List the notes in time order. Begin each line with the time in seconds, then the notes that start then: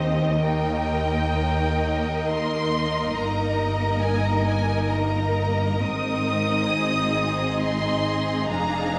Already playing: D#2 C4 D#4 G4 C5 D#5
0.41 A#3 D#4 A#4 D#5 G5
2.28 C6
3.17 G1 G2 A#5
4.02 G#5
4.25 A#5
4.45 G#5
4.90 A#5
5.83 G#1 G#2 C4 D#4 D#5 D#6
6.73 G#4
7.61 C6
8.49 F1 F2 D4 F5 A#5